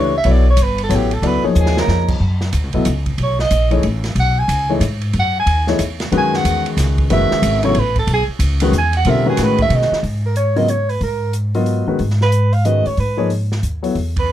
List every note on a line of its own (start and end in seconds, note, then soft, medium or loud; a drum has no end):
0.00 0.24 C#2 medium
0.00 0.11 E3 medium
0.00 0.11 A3 medium
0.00 0.11 D4 medium
0.00 0.11 G4 medium
0.00 0.11 B4 medium
0.00 0.16 C#5 medium
0.18 0.32 E5 medium
0.24 0.56 B1 medium
0.24 0.43 F#3 medium
0.24 0.44 B3 medium
0.24 0.44 E4 medium
0.24 0.44 A4 medium
0.24 0.44 C#5 medium
0.24 ride medium
0.31 0.49 D5 medium
0.50 0.64 C#5 medium
0.57 0.89 G1 medium
0.57 hi-hat pedal medium
0.57 ride medium
0.63 0.81 B4 medium
0.78 ride medium
0.84 0.97 A4 medium
0.89 1.22 A1 medium
0.89 1.08 F#3 medium
0.89 1.08 B3 medium
0.89 1.08 E4 medium
0.89 1.08 A4 medium
0.89 1.09 C#5 medium
0.89 hi-hat pedal medium
0.89 ride medium
0.96 1.16 G4 medium
1.11 1.28 A4 medium
1.11 ride soft
1.22 1.42 C#2 medium
1.22 1.41 F#3 medium
1.22 1.42 B3 medium
1.22 1.42 E4 medium
1.22 1.42 A4 medium
1.22 1.42 D5 medium
1.22 ride medium
1.26 1.45 B4 medium
1.44 2.14 F3 medium
1.44 2.14 A#3 medium
1.44 2.14 D#4 medium
1.44 1.61 D#4 soft
1.44 2.14 G#4 medium
1.44 2.14 C#5 medium
1.44 muted upright bass stroke soft
1.55 1.87 D#2 medium
1.55 hi-hat pedal medium
1.60 1.78 G#4 medium
1.66 snare medium
1.77 2.08 A#4 medium
1.77 snare medium
1.88 2.19 F2 medium
1.88 snare medium
2.08 kick medium
2.08 crash medium
2.20 2.52 F#2 medium
2.41 snare soft
2.53 2.63 D2 medium
2.53 hi-hat pedal medium
2.53 ride medium
2.63 2.74 C#2 soft
2.73 2.85 B1 medium
2.73 2.85 F#3 medium
2.73 2.85 B3 medium
2.73 2.85 E4 medium
2.73 2.85 A4 medium
2.73 2.85 D#5 medium
2.73 kick soft
2.73 ride soft
2.85 3.17 C#2 medium
2.85 hi-hat pedal medium
2.85 ride medium
3.06 kick medium
3.06 ride soft
3.18 3.50 B1 medium
3.18 ride medium
3.23 3.40 C#5 medium
3.39 3.70 D#5 medium
3.39 snare soft
3.51 3.83 A#1 medium
3.51 hi-hat pedal medium
3.51 ride medium
3.71 3.82 E3 medium
3.71 3.82 A3 medium
3.71 3.82 D#4 medium
3.71 3.83 G#4 medium
3.71 3.82 C#5 medium
3.71 ride soft
3.83 4.15 A1 medium
3.83 ride medium
4.04 snare soft
4.04 ride soft
4.15 4.48 B1 medium
4.15 ride medium
4.20 4.40 F#5 medium
4.39 4.71 G#5 loud
4.48 4.80 C#2 medium
4.48 hi-hat pedal medium
4.48 ride medium
4.69 4.81 E3 medium
4.69 4.80 A3 medium
4.69 4.80 D#4 medium
4.69 4.81 G#4 medium
4.69 4.81 C#5 medium
4.80 5.13 G#2 medium
4.80 hi-hat pedal medium
4.80 ride medium
5.01 ride soft
5.13 5.46 F#2 medium
5.13 ride medium
5.19 5.36 F#5 medium
5.40 5.68 G#5 medium
5.46 5.78 D#2 medium
5.46 ride medium
5.67 5.79 E3 medium
5.67 5.79 A3 medium
5.67 5.79 D#4 medium
5.67 5.79 G#4 medium
5.67 5.79 C#5 medium
5.67 snare soft
5.79 6.11 E2 medium
5.79 hi-hat pedal medium
5.79 ride medium
6.00 snare medium
6.00 ride soft
6.12 6.44 F#2 medium
6.12 7.03 D#3 medium
6.12 7.03 G#3 medium
6.12 7.03 C#4 medium
6.12 7.03 F#4 medium
6.12 7.03 B4 medium
6.12 ride medium
6.17 6.37 G#5 medium
6.34 6.67 F#5 medium
6.34 snare soft
6.44 6.76 E2 medium
6.44 hi-hat pedal medium
6.44 ride medium
6.66 ride soft
6.77 7.09 C#2 medium
6.77 snare soft
6.77 hi-hat pedal medium
6.77 ride medium
6.98 kick medium
6.98 ride soft
7.10 7.30 F#1 medium
7.10 7.59 D#3 medium
7.10 7.59 G#3 medium
7.10 7.60 C#4 medium
7.10 7.60 F#4 medium
7.10 7.60 B4 medium
7.10 7.61 E5 loud
7.10 ride medium
7.31 muted upright bass stroke soft
7.31 snare medium
7.42 7.74 G#1 medium
7.42 hi-hat pedal medium
7.42 ride medium
7.63 7.74 C#3 medium
7.63 7.74 F#3 medium
7.63 7.74 B3 medium
7.63 7.74 E4 medium
7.63 7.75 A4 medium
7.63 7.81 C#5 medium
7.63 ride medium
7.75 8.07 A1 medium
7.75 ride medium
7.79 7.98 B4 medium
7.96 8.09 A4 medium
7.96 kick medium
7.96 ride soft
8.07 8.27 B1 medium
8.07 ride medium
8.13 8.24 G#4 medium
8.28 muted upright bass stroke soft
8.39 8.71 C#2 medium
8.39 hi-hat pedal medium
8.39 ride medium
8.60 8.72 D#3 medium
8.60 8.72 G#3 medium
8.60 8.72 C#4 medium
8.60 8.72 F#4 medium
8.60 8.73 B4 medium
8.60 ride medium
8.72 9.04 E2 medium
8.72 hi-hat pedal medium
8.78 8.95 G#5 medium
8.93 9.11 F#5 medium
8.93 ride medium
9.05 9.37 B2 medium
9.05 9.25 D3 medium
9.05 9.25 G3 medium
9.05 9.25 C4 medium
9.05 9.25 F4 medium
9.05 9.25 A#4 medium
9.05 ride medium
9.10 9.29 E5 medium
9.26 9.96 D#3 medium
9.26 9.96 G#3 medium
9.26 9.96 C#4 medium
9.26 9.96 F#4 medium
9.26 9.45 G#4 medium
9.26 9.97 B4 medium
9.37 9.69 A2 medium
9.37 snare soft
9.37 hi-hat pedal medium
9.37 ride medium
9.43 9.61 B4 medium
9.58 9.77 E5 loud
9.58 kick medium
9.58 ride medium
9.70 9.90 B2 medium
9.70 ride medium
9.75 10.00 D#5 medium
9.82 snare soft
9.91 muted upright bass stroke soft
9.91 snare soft
10.03 10.97 G#2 medium
10.03 open hi-hat soft
10.26 10.36 A#4 medium
10.36 10.59 C#5 medium
10.36 closed hi-hat soft
10.56 10.67 C#3 medium
10.56 10.67 F#3 medium
10.56 10.67 B3 medium
10.56 10.67 F4 medium
10.56 10.67 A#4 medium
10.56 10.71 D#5 medium
10.56 open hi-hat soft
10.68 10.91 C#5 medium
10.68 closed hi-hat soft
10.89 11.01 B4 medium
10.89 open hi-hat soft
11.01 11.83 G#2 medium
11.01 11.33 A#4 medium
11.01 open hi-hat soft
11.33 closed hi-hat medium
11.55 11.85 F#3 medium
11.55 11.86 B3 medium
11.55 11.86 F4 medium
11.55 11.86 A#4 medium
11.55 11.86 D#5 medium
11.55 open hi-hat soft
11.66 open hi-hat soft
11.87 11.98 D#3 medium
11.87 11.99 G#3 medium
11.87 11.98 C#4 medium
11.87 11.99 F#4 medium
11.87 11.99 B4 medium
11.87 muted upright bass stroke soft
11.99 12.81 G#2 medium
11.99 open hi-hat soft
12.10 snare soft
12.21 12.55 B4 medium
12.21 snare soft
12.32 closed hi-hat soft
12.53 12.67 F5 medium
12.53 open hi-hat soft
12.65 12.84 D#3 medium
12.65 12.84 G#3 soft
12.65 12.84 C#4 soft
12.65 12.84 F#4 soft
12.65 12.84 B4 medium
12.65 12.88 D#5 medium
12.65 closed hi-hat soft
12.86 12.98 C#5 medium
12.86 muted upright bass stroke soft
12.86 open hi-hat soft
12.97 13.59 G#2 medium
12.97 13.29 B4 medium
12.97 open hi-hat soft
13.17 13.28 F3 medium
13.17 13.29 A#3 medium
13.17 13.29 D#4 medium
13.17 13.29 G#4 medium
13.17 13.29 C#5 medium
13.30 open hi-hat soft
13.52 snare soft
13.63 13.93 D#2 medium
13.63 closed hi-hat medium
13.83 13.94 F#3 medium
13.83 13.94 B3 medium
13.83 13.94 E4 medium
13.83 13.94 A4 soft
13.83 13.94 C#5 medium
13.83 open hi-hat soft
13.95 14.32 E2 medium
13.95 open hi-hat soft
14.17 14.32 B4 medium
14.17 kick medium
14.17 ride medium